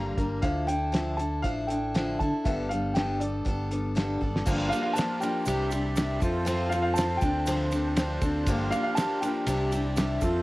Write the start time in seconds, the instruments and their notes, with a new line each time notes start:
Already playing: fingered electric bass G1, steel-string acoustic guitar G2 D3 G3 A#3 D4 A#4, grand piano A#5
0.18 fingered electric bass G1, steel-string acoustic guitar G3 A#3 D4 A#4, kick, closed hi-hat
0.42 fingered electric bass D2, steel-string acoustic guitar D3 F3 D4 E4 A4, grand piano F5, kick, closed hi-hat
0.67 steel-string acoustic guitar D4 E4 A4, grand piano G5, closed hi-hat
0.92 steel-string acoustic guitar D3 F3 D4 E4 A4, snare, closed hi-hat
1.17 steel-string acoustic guitar D4 E4 A4, grand piano A5, closed hi-hat
1.42 fingered electric bass A1, steel-string acoustic guitar F3 D4 E4 A4, grand piano F5, kick, closed hi-hat
1.67 steel-string acoustic guitar E4 A4, grand piano G5, closed hi-hat
1.71 steel-string acoustic guitar D4
1.94 steel-string acoustic guitar D3 F3 D4 E4 A4, snare, closed hi-hat
2.19 fingered electric bass D3, steel-string acoustic guitar D4 E4 A4, grand piano A5, kick, closed hi-hat
2.44 fingered electric bass G1, steel-string acoustic guitar G2 D3 G3 B3 D4 A4, grand piano E5, kick, closed hi-hat
2.69 steel-string acoustic guitar D4 A4, grand piano F5, closed hi-hat
2.73 steel-string acoustic guitar G3 B3
2.94 steel-string acoustic guitar G2 D3 G3 B3 D4 A4, grand piano G5, snare, closed hi-hat
3.19 steel-string acoustic guitar B3 D4 A4, grand piano D5, closed hi-hat
3.23 steel-string acoustic guitar G3
3.45 fingered electric bass G1, steel-string acoustic guitar G3 B3 D4 A4, kick, closed hi-hat
3.71 steel-string acoustic guitar G3 B3 D4 A4, closed hi-hat
3.95 steel-string acoustic guitar G2 D3 G3 B3 D4 A4, snare, closed hi-hat
4.21 fingered electric bass G1, steel-string acoustic guitar G3 B3 D4 A4, kick
4.36 snare
4.46 fingered electric bass G1, steel-string acoustic guitar G2 D3 F3 A#3 D4 G4, accordion G3 D4 F4 A#4, kick, crash, shaker
4.69 steel-string acoustic guitar A#3 D4 G4, grand piano F5, ride, shaker
4.73 steel-string acoustic guitar F3
4.82 grand piano F5
4.93 steel-string acoustic guitar F3 A#3 D4, grand piano A5, shaker
4.98 steel-string acoustic guitar G4, snare, ride
5.20 steel-string acoustic guitar F3 A#3 D4 G4, grand piano G5, ride, shaker
5.46 fingered electric bass C2, steel-string acoustic guitar C3 G3 D4 E4 G4, accordion C4 G4 D5 E5, ride, shaker
5.70 steel-string acoustic guitar D4 E4 G4, ride, shaker
5.96 steel-string acoustic guitar G3 D4 E4 G4, snare, ride, shaker
6.20 fingered electric bass F2, accordion F3 F4 A4 C5, steel-string acoustic guitar C4 F4 A4, kick, ride, shaker
6.45 steel-string acoustic guitar F3 C4 F4 A4, ride, shaker
6.69 steel-string acoustic guitar F4 A4, grand piano F5, ride, shaker
6.75 steel-string acoustic guitar C4
6.82 grand piano F5
6.94 steel-string acoustic guitar F3 C4, grand piano A5, shaker
6.98 steel-string acoustic guitar F4 A4, snare, ride
7.17 steel-string acoustic guitar A4, grand piano G5, shaker
7.22 fingered electric bass D2, steel-string acoustic guitar C4 D4, accordion D4, kick, ride
7.46 steel-string acoustic guitar D3 F3 C4 D4 A4, ride, shaker
7.71 steel-string acoustic guitar C4 D4 A4, ride, shaker
7.97 steel-string acoustic guitar F3 C4 D4, snare, ride, shaker
8.01 steel-string acoustic guitar A4
8.22 fingered electric bass D2, steel-string acoustic guitar C4 D4 A4, kick, ride, shaker
8.46 fingered electric bass G1, steel-string acoustic guitar G2 D3 F3 A#3 D4 G4, accordion G3 A#4, kick, ride, shaker
8.71 steel-string acoustic guitar F3 A#3 D4 G4, grand piano F5, ride, shaker
8.83 grand piano F5
8.95 steel-string acoustic guitar F3 A#3 D4, grand piano A5, snare, ride, shaker
8.99 steel-string acoustic guitar G4
9.21 steel-string acoustic guitar A#3 D4 G4, grand piano G5, ride, shaker
9.25 steel-string acoustic guitar F3
9.47 fingered electric bass C2, steel-string acoustic guitar C3 G3 D4 E4 G4, accordion C4 G4 D5 E5, ride, shaker
9.72 steel-string acoustic guitar D4 E4 G4, ride, shaker
9.96 steel-string acoustic guitar G3 D4 E4 G4, snare, ride, shaker
10.21 fingered electric bass F2, accordion F3 F4 A4 C5, steel-string acoustic guitar C4 F4 A4, kick, ride, shaker